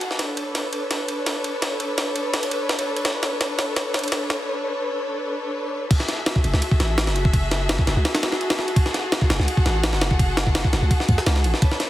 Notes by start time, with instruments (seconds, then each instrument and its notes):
Already playing: string section F#4 G#4 A4 F#5
0.01 ride
0.11 snare
0.19 string section D4 A4 B4 C#5, snare, ride
0.37 ride
0.55 snare, ride
0.73 ride
0.91 snare, ride
1.08 ride
1.26 snare, ride
1.44 ride
1.62 snare, ride
1.80 ride
1.98 snare, ride
2.16 ride
2.34 snare, ride
2.43 ride
2.51 ride
2.69 snare, ride
2.79 ride
2.96 ride
3.05 snare, ride
3.23 snare, ride
3.41 snare, ride
3.59 snare, ride
3.76 snare, ride
3.94 snare, ride
3.99 ride
4.04 ride
4.08 ride
4.12 snare, ride
4.30 snare, ride
5.91 string section F#4 G#4 A4 E5, kick, crash, ride
6.00 snare
6.08 snare, ride
6.26 snare, ride
6.36 kick
6.44 808-style bass F#1, ride
6.54 808-style bass C#2, snare
6.62 ride
6.71 kick
6.80 808-style bass A1, snare, ride
6.98 snare, ride
7.07 808-style bass F#1, snare
7.16 ride
7.25 kick
7.33 kick, ride
7.51 snare, ride
7.69 snare, ride
7.79 kick
7.87 808-style bass F#1, snare, ride
7.97 808-style bass C#2
8.05 snare, ride
8.15 snare, ride
8.23 snare, ride
8.32 snare
8.41 ride
8.50 snare, ride
8.59 snare
8.68 ride
8.76 string section F#5, kick, ride
8.86 snare
8.94 snare, ride
9.12 snare, ride
9.22 kick
9.30 808-style bass F#1, snare, ride
9.39 808-style bass C#2, snare
9.48 ride
9.57 kick
9.66 808-style bass A1, snare, ride
9.84 snare, ride
9.93 808-style bass F#1, snare
10.01 snare, ride
10.11 kick
10.19 kick, ride
10.37 snare, ride
10.47 kick
10.55 snare, ride
10.64 kick
10.73 808-style bass F#1, snare, ride
10.82 808-style bass C#2
10.91 kick, ride
11.00 snare
11.09 808-style bass C#2, kick, ride
11.18 snare
11.26 808-style bass C#2, snare, ride
11.36 snare
11.44 808-style bass A1, ride
11.54 snare
11.62 string section D4 B4 C#5, kick, ride
11.71 snare
11.80 snare, ride